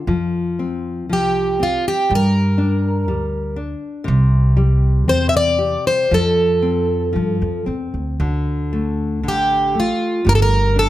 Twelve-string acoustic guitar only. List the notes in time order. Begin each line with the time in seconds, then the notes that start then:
1.13 G4
1.63 F4
1.88 G4
2.15 A#4
5.09 C5
5.29 E5
5.37 D5
5.87 C5
6.14 A4
9.28 G4
9.80 F4
10.29 A#4
10.35 A4
10.42 A#4
10.79 A4